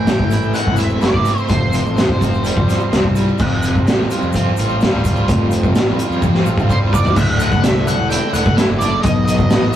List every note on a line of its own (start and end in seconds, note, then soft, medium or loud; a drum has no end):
0.00 0.15 A1 medium
0.00 0.79 A2 medium
0.00 1.03 E3 medium
0.00 1.47 A3 medium
0.00 3.34 C4 medium
0.00 1.47 E4 medium
0.00 1.45 B4 medium
0.00 0.52 G5 medium
0.07 0.79 A3 medium
0.07 snare loud
0.07 closed hi-hat medium
0.07 shaker medium
0.19 kick medium
0.31 0.50 A1 medium
0.31 1.00 E4 medium
0.31 closed hi-hat medium
0.31 shaker medium
0.43 shaker soft
0.54 1.24 C4 medium
0.54 0.79 F#5 medium
0.54 closed hi-hat medium
0.54 shaker medium
0.67 0.96 E1 loud
0.67 kick medium
0.76 1.96 A3 medium
0.76 1.03 E5 medium
0.76 closed hi-hat medium
0.76 shaker medium
0.90 shaker soft
1.01 1.22 F#1 medium
1.01 1.49 E4 medium
1.01 1.47 D5 medium
1.01 snare loud
1.01 closed hi-hat medium
1.01 shaker medium
1.14 kick medium
1.25 2.19 C4 medium
1.25 closed hi-hat medium
1.25 shaker medium
1.38 shaker soft
1.47 1.79 F1 loud
1.47 2.67 F2 medium
1.47 3.36 G3 medium
1.47 3.36 F4 medium
1.47 3.35 A4 medium
1.47 3.11 C5 medium
1.47 kick loud
1.47 closed hi-hat medium
1.47 shaker medium
1.72 2.91 C3 medium
1.72 closed hi-hat medium
1.72 shaker medium
1.85 2.04 A1 medium
1.85 shaker soft
1.97 2.65 F3 medium
1.97 snare loud
1.97 closed hi-hat medium
1.97 shaker medium
2.09 kick medium
2.19 2.50 F1 medium
2.19 2.90 C4 medium
2.19 kick medium
2.19 closed hi-hat medium
2.19 shaker medium
2.34 shaker soft
2.44 3.13 G3 medium
2.44 closed hi-hat medium
2.44 shaker medium
2.57 2.76 F2 loud
2.57 kick medium
2.66 3.38 F3 medium
2.66 snare soft
2.66 closed hi-hat medium
2.66 shaker medium
2.80 shaker soft
2.91 3.30 C2 medium
2.91 3.38 C4 medium
2.91 snare medium
2.91 closed hi-hat medium
2.91 shaker medium
3.04 kick medium
3.15 3.38 G3 medium
3.15 closed hi-hat medium
3.15 shaker medium
3.28 shaker soft
3.38 3.78 F1 loud
3.38 4.56 F2 medium
3.38 7.12 F4 medium
3.38 7.12 A4 medium
3.38 7.12 C5 medium
3.38 7.12 G5 medium
3.38 kick loud
3.38 crash loud
3.38 shaker medium
3.62 4.81 C3 medium
3.62 closed hi-hat medium
3.62 shaker loud
3.75 kick medium
3.75 shaker soft
3.86 4.05 A1 medium
3.86 4.79 G3 medium
3.86 snare loud
3.86 closed hi-hat medium
3.86 shaker medium
4.10 4.57 F4 medium
4.10 closed hi-hat medium
4.10 shaker loud
4.22 4.51 F2 medium
4.22 shaker soft
4.33 5.52 C4 medium
4.33 kick medium
4.33 closed hi-hat loud
4.33 shaker medium
4.57 4.86 A1 medium
4.57 5.04 F4 medium
4.57 closed hi-hat medium
4.57 shaker loud
4.69 shaker soft
4.81 5.75 G3 medium
4.81 snare loud
4.81 closed hi-hat medium
4.81 shaker medium
4.93 5.29 D1 medium
5.05 6.00 F4 medium
5.05 kick medium
5.05 closed hi-hat medium
5.05 shaker loud
5.16 shaker soft
5.28 5.66 F1 loud
5.28 6.46 F2 medium
5.28 kick loud
5.28 closed hi-hat loud
5.28 shaker medium
5.51 6.69 C3 medium
5.51 closed hi-hat medium
5.51 shaker loud
5.63 kick medium
5.63 shaker soft
5.75 5.94 A1 medium
5.75 6.69 G3 medium
5.75 snare loud
5.75 closed hi-hat medium
5.75 shaker medium
5.99 6.43 F4 medium
5.99 closed hi-hat medium
5.99 shaker loud
6.10 6.38 F2 medium
6.10 shaker soft
6.22 7.16 C4 medium
6.22 kick medium
6.22 high tom medium
6.22 shaker medium
6.34 snare medium
6.44 6.74 A1 medium
6.44 6.91 F4 medium
6.44 shaker loud
6.58 kick medium
6.58 shaker soft
6.69 7.16 G3 medium
6.69 6.77 C5 medium
6.69 kick medium
6.69 shaker medium
6.82 7.00 E1 medium
6.92 7.16 F4 medium
6.92 7.17 D5 medium
6.92 kick medium
6.92 shaker loud
7.05 floor tom medium
7.05 shaker soft
7.15 7.54 D1 loud
7.15 8.33 D2 medium
7.15 9.01 A3 medium
7.15 9.02 D4 medium
7.15 9.02 E4 medium
7.15 9.02 D5 medium
7.15 7.40 E5 medium
7.15 kick loud
7.15 crash loud
7.15 shaker medium
7.39 7.63 A2 medium
7.39 7.63 F#5 medium
7.39 closed hi-hat medium
7.39 shaker loud
7.52 kick medium
7.52 shaker soft
7.63 7.92 C2 medium
7.63 8.81 A2 medium
7.63 7.87 E5 medium
7.63 snare loud
7.63 closed hi-hat loud
7.63 shaker medium
7.87 9.04 D3 medium
7.87 8.09 F#5 loud
7.87 closed hi-hat medium
7.87 shaker loud
7.99 8.17 E1 medium
8.10 8.56 E4 medium
8.10 8.33 G5 medium
8.10 closed hi-hat loud
8.10 shaker medium
8.33 8.52 E1 loud
8.33 8.80 A3 medium
8.33 8.57 F#5 medium
8.33 closed hi-hat medium
8.33 shaker loud
8.46 kick medium
8.46 shaker soft
8.57 9.04 E4 medium
8.57 8.63 E5 medium
8.57 snare loud
8.57 closed hi-hat loud
8.57 shaker medium
8.69 8.97 F#1 medium
8.79 9.04 A3 medium
8.79 9.02 D5 medium
8.79 closed hi-hat medium
8.79 shaker loud
9.02 9.42 B1 loud
9.02 9.76 B2 medium
9.02 9.76 F#3 medium
9.02 9.76 B3 medium
9.02 9.76 D#4 medium
9.02 9.76 B4 medium
9.02 9.24 D#5 loud
9.02 kick loud
9.02 closed hi-hat loud
9.02 shaker medium
9.25 9.76 F#3 medium
9.25 9.76 D#5 medium
9.25 closed hi-hat medium
9.25 shaker loud
9.39 kick medium
9.39 shaker soft
9.50 9.76 A1 medium
9.50 9.76 B3 medium
9.50 snare loud
9.50 closed hi-hat medium
9.50 shaker medium